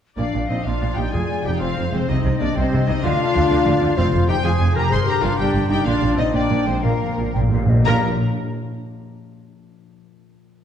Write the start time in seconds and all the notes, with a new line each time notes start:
0.17 A#1 A#2 A#3 D4 D5 F5
0.26 F3
0.33 A#1 A#2 C4
0.42 F4
0.48 A#1 A#2 C4 D#4 C5 D#5
0.58 F4
0.65 A#1 A#2 D4 F4 D5 F5
0.73 C6
0.81 A#1 A#2 C5
0.90 F4
0.96 A#1 A#2 C4 D#4 G4 G5
1.06 F3
1.12 F1 F2 F4 G#4 G#5
1.21 C3
1.29 C4
1.37 F4
1.45 F1 F2 D#4 G4 C5 G5
1.53 F4
1.60 F1 F2 C4 F4 C5 F5
1.68 C6
1.77 F1 F2
1.84 F4
1.91 F1 F2 G#3 C4 C5
2.00 C3
2.08 C2 C3 C4 D#4 D#5
2.16 G3
2.24 C2 C3 C4
2.33 G4
2.39 C2 C3 A#3 D4 C5 D5
2.48 G4
2.55 C2 C3 G3 C4 C5 D#5 G5
2.64 C6
2.71 C2 C3 C5
2.79 G4
2.87 C2 C3 C4 D#4 D#5
2.95 G3
3.02 D2 D3 D4 F4 F5
3.11 A#3
3.19 C4
3.34 D2 D3 A#4
3.42 C5
3.50 D2 D3 D5 F5
3.58 A#5
3.66 D2 D3 C5
3.73 A#4
3.81 D2 D3 F4
3.89 A#3
3.97 F1 F2 C4 F4 C5 F5
4.04 C3
4.13 F1 F2 C4
4.21 F4
4.28 F1 F2 D#4 G4 G#4 G5
4.37 C5
4.44 F1 F2 F4 G#4 F5 G#5
4.53 G#5
4.60 F1 F2 C5
4.69 G#4
4.75 F1 F2 F4 G4 A#4 A#5
4.84 C3
4.90 G1 G2 G#4 A#4 C5 C6
4.99 D3
5.06 A#3 G4 A#4 A#5
5.14 D4
5.22 G1 G2 D4 F4 A#4 F5
5.30 D4
5.38 G1 G2 D4 G4 D5 G5
5.46 A#5
5.53 G1 G2 A#4
5.61 D4
5.69 G1 G2 A#3 D#4 G4 G5
5.78 D3
5.85 A#1 A#2 D4 F4 D5 F5
5.95 F3
6.02 A#1 A#2 C4
6.10 D4
6.17 A#1 A#2 C4 D#4 A#4 D#5
6.26 C5
6.32 A#1 A#2 A#3 D4 D5 G5
6.41 A#5
6.49 A#1 A#2 C5
6.58 A#4
6.66 A#1 A#2 G#3 C4 D4 C5
6.75 F3
6.82 A#1 A#2 F3 A#3 A#4 F5
6.92 F3
7.02 A#2
7.08 A#2 F4
7.16 A#1 A#2 A#4
7.25 A#2
7.33 A#1 A#2 F5 G5
7.41 A#2 A#5
7.49 A#1 A#2 C5 F5
7.54 A#2
7.60 A#4
7.66 A#2 F4 D#5
7.70 A#1 A#2
7.77 A#2 F3
7.82 A#3 D4
7.86 A#1 A#2 F4 A#4 A#5
7.93 F5